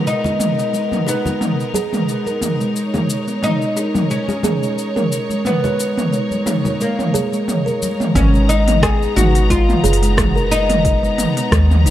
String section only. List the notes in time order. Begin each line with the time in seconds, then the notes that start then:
Already playing: G#3 B3 D#4 A#4
2.77 C#5
8.15 G#3 B3 D#4 A#5